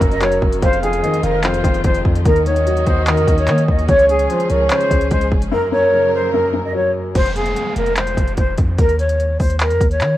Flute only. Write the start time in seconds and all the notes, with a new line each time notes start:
0.11 D#5
0.22 C#5
0.62 C5
0.83 G#4
1.24 A#4
1.44 C5
1.85 C5
2.26 A#4
2.46 C#5
2.87 C5
3.08 A#4
3.38 C#5
3.69 D#5
3.89 C#5
4.09 G#4
4.50 A#4
4.71 C5
5.11 C5
5.52 A#4
5.72 C#5
6.14 C5
6.33 A#4
6.64 D#5
6.75 C#5
7.15 C5
7.36 G#4
7.77 A#4
7.97 C5
8.38 C5
8.79 A#4
8.99 C#5
9.40 C5
9.61 A#4
9.91 C#5